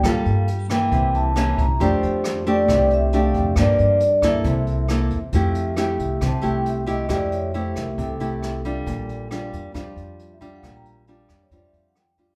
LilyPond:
<<
  \new Staff \with { instrumentName = "Vibraphone" } { \time 4/4 \key f \major \tempo 4 = 136 f''4 r8 g''4 a''4 bes''8 | c''4. d''4 e''8 f''4 | d''8 d''4 e''4. r4 | r2 a''8 g''8 e''8 ees''8 |
d''8 des''8 c''8 bes'8 a'2~ | a'4 r2 r16 e''16 f''16 ges''16 | g''16 bes''16 r4 r16 des''16 d''16 e''16 r16 ges''16 g''8 r8 | }
  \new Staff \with { instrumentName = "Nylon-string guitar" } { \time 4/4 \key f \major << { <bes f' a'>4 r8 <e bes>4. <e bes des'>8 r8 | <a d' g'>4. <a d' g'>4. <a d' g'>4 | <f bes d'>4 r8 <bes e' a'>4. <bes e' a'>8 r8 | <a e' g'>4 <a e' g'>4 r8 <a e' g'>4 <a e' g'>8 |
<a e' g'>4 <a e' g'>4. <a e' g'>4 <g d' f'>8~ | <g d' f'>4 <g d' f'>4 <g d' f'>4. <g d' f'>8~ | <g d' f'>4 <g d' f'>4 <g d' f'>4 r8 <g d' f'>8 | } \\ { g2 c2 | f2 c2 | g,2 c2 | f2 c2 |
f2 c2 | bes,2 f2 | bes,2 f2 | } >> }
  \new Staff \with { instrumentName = "Upright bass" } { \clef bass \time 4/4 \key f \major g,16 r16 g,4. c,4. c,8 | f,16 r16 f,4. c,4. f,8 | g,16 r16 g,4. c,4. e,8 | f,4. c,8 c,8 c,4. |
f,4. c,8 c,8 c,4. | bes,,4. f,8 f,8 f,4. | bes,,4. f,8 f,8 f,4. | }
  \new DrumStaff \with { instrumentName = "Drums" } \drummode { \time 4/4 <hh bd ss>8 hh8 hh8 <hh ss>8 <hh bd>8 hh8 <hh ss>8 <hh bd>8 | <hh bd>8 hh8 <hh ss>8 hh8 <hh bd ss>8 hh8 hh8 <hh bd>8 | <hh bd ss>8 hh8 hh8 <hh bd ss>8 <hh bd>8 hh8 <hh ss>8 hh8 | <hh bd>8 hh8 <hh ss>8 <hh bd>8 <hh bd ss>8 hh8 hh8 <hh bd>8 |
<hh bd ss>8 hh8 hh8 <hh bd ss>8 <hh bd>8 hh8 <hh ss>8 <hh bd>8 | <hh bd>8 hh8 <hh ss>8 <hh bd>8 <hh bd ss>8 hh8 hh8 <hh bd>8 | <hh bd ss>8 hh8 hh8 <hh bd ss>8 <hh bd>8 hh8 <hh ss>8 <hh bd>8 | }
>>